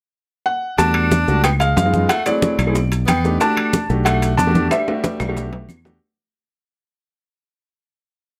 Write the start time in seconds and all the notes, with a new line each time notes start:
0.46 F#5
0.78 E2 G3 A3 D4 F#4 A5, high bongo, high conga, high timbale, maracas
0.94 high conga, high timbale, claves
1.11 high bongo, high conga, maracas
1.28 C#2 G3 A3 D4 F#4, high conga, maracas
1.44 B3 G5, high bongo, high conga, high timbale, claves, maracas
1.60 G#3 F5, high conga, high timbale, maracas
1.77 F#2 G#3 F5, high bongo, low bongo, high conga, low timbale, maracas
1.85 G#3 B3 D#4 F4
1.94 G#3 B3 D#4 F4, high conga, maracas
2.09 A3 F#5, high bongo, high conga, high timbale, claves, maracas
2.25 F#3 A3 C4 E4 G#4 D5, high bongo, high conga, high timbale, maracas
2.42 high bongo, high conga, maracas
2.59 B1, high conga, high timbale, claves, maracas
2.67 A3 C4 E4 G#4
2.75 high bongo, high conga, maracas
2.92 high bongo, high conga, high timbale, maracas
3.07 E2 B3 G5, high bongo, low bongo, high conga, high timbale, claves, maracas
3.24 A3 D4 D#4 G4, high bongo, high conga, maracas
3.40 A3 D4 F#4 G4 A5, high bongo, high conga, high timbale, maracas
3.57 high conga, high timbale, claves
3.73 high bongo, high conga, maracas
3.90 B1 A3 D4 F#4 G4, high conga, maracas
4.04 A3 F#5, high bongo, high conga, high timbale, claves, maracas
4.22 high conga, high timbale, maracas
4.37 E2 D4 A5, high bongo, low bongo, high conga, maracas
4.47 A3 D4 F#4 G4
4.55 A3 D4 F#4 G4, high conga, maracas
4.70 G3 E5, high bongo, high conga, high timbale, claves, maracas
4.87 A3 D4 F#4 G4, high bongo, high conga, high timbale
5.04 high bongo, high conga, high timbale, maracas
5.20 B1, high conga, low timbale, claves, maracas
5.29 A3 D4 F#4 G4
5.37 low bongo, high conga, low timbale, maracas
5.53 low bongo, high conga, low timbale
5.69 E2, high conga, claves, maracas
5.85 A3 D4 F#4 G4, low bongo, high conga, low timbale, maracas